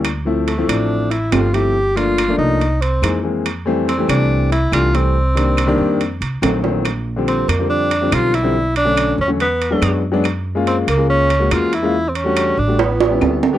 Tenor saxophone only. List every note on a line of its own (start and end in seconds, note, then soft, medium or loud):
0.48 0.70 A3 medium
0.69 1.13 D4 medium
1.11 1.34 E4 medium
1.32 1.55 F4 medium
1.53 1.98 G4 loud
1.96 2.38 F4 loud
2.38 2.83 D#4 loud
2.81 3.24 C4 medium
3.88 4.08 C4 medium
4.10 4.49 D4 medium
4.52 4.71 E4 medium
4.74 4.97 F4 loud
4.96 6.22 C4 medium
7.28 7.50 C4 medium
7.49 7.69 A#3 medium
7.70 8.15 D4 loud
8.14 8.36 F4 loud
8.34 8.76 E4 loud
8.77 9.16 D4 loud
9.21 9.30 C#4 medium
9.41 10.00 B3 medium
10.67 10.77 C4 medium
10.89 11.08 A#3 medium
11.10 11.54 C#4 loud
11.53 11.76 F4 loud
11.74 12.10 E4 loud
12.09 12.17 C4 medium
12.16 12.60 C#4 loud
12.59 12.82 D4 loud
12.80 13.43 B3 medium